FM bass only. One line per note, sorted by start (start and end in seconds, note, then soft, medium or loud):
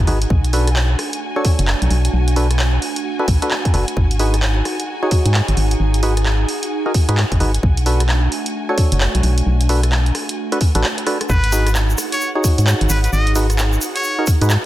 0.07 0.26 G#1 medium
0.30 0.95 B1 medium
1.59 1.75 F#1 loud
1.82 1.88 B1 medium
1.91 2.09 B1 medium
2.13 2.79 B1 medium
3.28 3.39 B1 medium
3.74 3.84 F#1 medium
3.97 4.62 G#1 loud
5.26 5.41 G#2 loud
5.48 5.55 G#1 medium
5.57 5.76 G#1 medium
5.80 6.45 G#1 loud
7.09 7.24 G#2 loud
7.32 7.38 G#1 medium
7.40 7.59 G#1 medium
7.63 8.28 B1 loud
8.92 9.08 F#1 loud
9.15 9.21 B1 medium
9.23 9.42 B1 medium
9.46 10.12 B1 loud
10.75 10.84 A1 medium
11.30 11.95 G#1 medium
12.58 12.74 G#2 loud
12.81 12.88 G#1 medium
12.90 13.08 G#1 loud
13.13 13.78 G#1 loud
14.41 14.57 G#2 loud